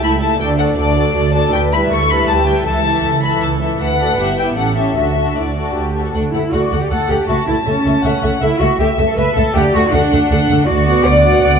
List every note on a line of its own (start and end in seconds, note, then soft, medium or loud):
0.03 0.36 C#2 medium
0.03 0.20 A3 soft
0.03 0.40 E4 soft
0.03 0.20 E4 soft
0.03 0.21 A4 soft
0.03 0.21 E5 soft
0.03 0.11 B5 medium
0.22 0.40 A3 soft
0.22 0.40 E4 soft
0.22 0.39 A4 soft
0.22 0.40 E5 soft
0.22 0.40 A5 medium
0.40 0.74 D2 medium
0.40 0.59 A3 soft
0.40 1.51 D4 medium
0.40 0.59 F#4 soft
0.40 0.58 A4 soft
0.40 0.59 D5 soft
0.40 0.47 G5 medium
0.58 0.77 A3 soft
0.58 0.78 F#4 soft
0.58 0.77 A4 soft
0.58 0.77 D5 soft
0.58 0.66 F#5 medium
0.76 1.11 D2 medium
0.76 0.96 A3 soft
0.76 0.96 F#4 soft
0.76 0.96 A4 soft
0.76 1.32 D5 medium
0.76 0.96 D5 soft
0.98 1.15 A3 soft
0.98 1.15 F#4 soft
0.98 1.15 A4 soft
0.98 1.15 D5 soft
1.16 1.49 D2 medium
1.16 1.34 A3 soft
1.16 1.34 F#4 soft
1.16 1.34 A4 soft
1.16 1.33 D5 soft
1.33 1.53 A3 soft
1.33 1.53 F#4 soft
1.33 1.53 A4 soft
1.33 1.53 D5 soft
1.33 1.52 A5 medium
1.52 1.86 D2 medium
1.52 1.91 B4 medium
1.52 1.60 G5 medium
1.72 2.09 G3 soft
1.72 2.09 E4 soft
1.72 2.09 B4 soft
1.72 2.09 E5 soft
1.72 1.80 B5 medium
1.91 2.24 D2 soft
1.91 2.29 A4 medium
1.91 2.09 C#6 medium
2.10 2.47 G3 soft
2.10 2.47 E4 soft
2.10 2.46 B4 soft
2.10 2.46 E5 soft
2.10 2.29 B5 medium
2.28 2.62 D2 medium
2.28 2.67 G4 medium
2.28 2.47 A5 medium
2.47 2.67 G3 soft
2.47 2.66 E4 soft
2.47 2.66 B4 soft
2.47 2.65 E5 soft
2.47 2.66 G5 medium
2.66 3.00 C#2 soft
2.66 2.85 E3 soft
2.66 2.85 E4 soft
2.66 3.78 A4 medium
2.66 2.84 A4 soft
2.66 2.84 E5 soft
2.66 3.22 A5 medium
2.86 3.23 E3 soft
2.86 3.23 E4 soft
2.86 3.23 A4 soft
2.86 3.23 E5 soft
3.04 3.38 C#2 medium
3.23 3.60 E3 soft
3.23 3.61 E4 soft
3.23 3.60 A4 soft
3.23 3.60 E5 soft
3.23 3.42 B5 medium
3.42 3.76 C#2 soft
3.42 3.50 A5 medium
3.61 3.80 E3 soft
3.61 3.80 E4 soft
3.61 3.80 A4 soft
3.61 3.80 E5 soft
3.80 4.14 D2 soft
3.80 4.58 B4 soft
3.80 4.35 F#5 medium
3.99 4.18 A3 soft
3.99 4.19 F#4 soft
3.99 4.19 A4 soft
3.99 4.19 D5 soft
4.18 4.53 G1 soft
4.18 4.37 B3 soft
4.18 4.37 E4 soft
4.18 4.38 G4 soft
4.18 4.38 E5 soft
4.38 4.57 B3 soft
4.38 4.57 E4 soft
4.38 4.57 G4 soft
4.38 4.58 E5 soft
4.38 4.46 G5 medium
4.57 4.92 A1 soft
4.57 4.77 C#4 soft
4.57 4.77 E4 soft
4.57 4.77 G4 soft
4.57 4.96 A4 soft
4.57 4.77 A4 soft
4.57 4.77 F#5 soft
4.77 4.97 C#4 soft
4.77 4.97 E4 soft
4.77 4.97 G4 soft
4.77 4.97 A4 soft
4.77 4.96 E5 soft
4.96 5.32 D2 soft
4.96 5.16 D4 soft
4.96 5.33 F#4 soft
4.96 5.17 F#4 soft
4.96 5.16 F#4 soft
4.96 5.17 A4 soft
4.96 5.36 E5 medium
5.17 5.56 D4 soft
5.17 5.56 F#4 soft
5.17 5.56 A4 soft
5.36 5.71 D2 soft
5.36 5.44 E4 soft
5.36 5.76 D5 soft
5.56 5.94 D4 soft
5.56 5.75 F#4 soft
5.56 5.95 F#4 soft
5.56 5.95 A4 soft
5.75 6.09 D2 soft
5.75 6.04 G4 soft
5.96 6.14 D4 soft
5.96 6.14 F#4 soft
5.96 6.14 A4 soft
6.05 6.15 A4 soft
6.13 6.21 D2 soft
6.13 6.22 A3 soft
6.13 6.32 D4 medium
6.13 6.23 A4 soft
6.13 6.22 F#5 soft
6.33 6.40 D2 soft
6.33 6.41 A3 soft
6.33 6.52 E4 medium
6.33 6.41 A4 soft
6.33 6.41 F#5 soft
6.52 6.60 D2 soft
6.52 6.60 A3 soft
6.52 6.81 F#4 medium
6.52 6.61 A4 soft
6.52 6.88 D5 soft
6.52 6.60 F#5 soft
6.71 6.78 D2 soft
6.71 6.80 A3 soft
6.71 6.80 A4 soft
6.71 6.79 F#5 soft
6.81 6.91 G4 medium
6.90 6.97 D2 soft
6.90 6.98 A3 soft
6.90 7.09 A4 medium
6.90 6.98 A4 soft
6.90 6.99 F#5 soft
6.90 7.29 F#5 soft
7.09 7.17 D2 soft
7.09 7.17 A3 soft
7.09 7.28 G4 medium
7.09 7.18 A4 soft
7.09 7.17 F#5 soft
7.28 7.35 C#2 medium
7.28 7.36 A3 soft
7.28 7.47 F#4 medium
7.28 7.36 A4 soft
7.28 7.36 E5 soft
7.28 8.03 A5 medium
7.47 7.55 C#2 soft
7.47 7.56 A3 soft
7.47 7.54 E4 medium
7.47 7.56 A4 soft
7.47 7.55 E5 soft
7.66 7.73 C#2 soft
7.66 7.75 A3 soft
7.66 8.40 C#4 medium
7.66 7.74 A4 soft
7.66 7.74 E5 soft
7.85 7.93 C#2 medium
7.85 7.93 A3 soft
7.85 7.93 A4 soft
7.85 7.93 E5 soft
8.04 8.11 C#2 medium
8.04 8.12 A3 soft
8.04 8.12 A4 soft
8.04 8.13 E5 soft
8.04 8.42 F#5 medium
8.22 8.30 C#2 soft
8.22 8.31 A3 soft
8.22 8.31 A4 soft
8.22 8.30 E5 soft
8.41 8.49 C#2 medium
8.41 8.49 A3 soft
8.41 8.61 E4 medium
8.41 8.49 A4 soft
8.41 8.49 E5 medium
8.41 8.79 E5 soft
8.60 8.68 C#2 medium
8.60 8.68 A3 soft
8.60 8.79 F#4 medium
8.60 8.68 A4 soft
8.60 8.68 E5 soft
8.79 8.86 C#2 medium
8.79 8.87 A3 soft
8.79 8.87 G4 medium
8.79 8.87 A4 soft
8.79 8.87 E5 medium
8.79 9.17 E5 medium
8.97 9.05 C#2 medium
8.97 9.06 A3 soft
8.97 9.06 A4 soft
8.97 9.06 E5 medium
9.07 9.17 A4 medium
9.17 9.24 C#2 medium
9.17 9.25 A3 soft
9.17 9.25 A4 medium
9.17 9.35 B4 medium
9.17 9.25 E5 medium
9.17 9.55 E5 medium
9.36 9.44 C#2 medium
9.36 9.44 A3 medium
9.36 9.43 A4 medium
9.36 9.54 A4 medium
9.36 9.44 E5 medium
9.54 9.62 D2 medium
9.54 9.63 A3 medium
9.54 9.73 G4 medium
9.54 9.63 A4 medium
9.54 9.93 D5 medium
9.54 9.63 F#5 medium
9.73 9.81 D2 medium
9.73 9.81 A3 medium
9.73 9.92 F#4 medium
9.73 9.81 A4 medium
9.73 9.82 F#5 medium
9.92 10.00 D2 medium
9.92 10.00 A3 medium
9.92 10.67 D4 medium
9.92 10.00 A4 medium
9.92 10.30 F#5 medium
9.92 10.01 F#5 medium
10.11 10.19 D2 medium
10.11 10.20 A3 medium
10.11 10.19 A4 medium
10.11 10.20 F#5 medium
10.30 10.38 D2 medium
10.30 10.39 A3 medium
10.30 10.39 A4 medium
10.30 10.38 F#5 medium
10.30 10.68 F#5 medium
10.49 10.57 D2 medium
10.49 10.57 A3 soft
10.49 10.58 A4 medium
10.49 10.57 F#5 medium
10.67 11.01 D2 medium
10.67 11.05 F#4 medium
10.67 11.42 D5 medium
10.86 11.23 B3 medium
10.86 11.24 F#4 medium
10.86 11.23 F#5 medium
11.05 11.39 D2 medium
11.05 11.41 D5 loud
11.24 11.60 B3 medium
11.24 11.60 F#4 medium
11.24 11.60 F#5 medium
11.42 11.60 D2 medium
11.42 11.60 D5 medium
11.42 11.60 F#5 medium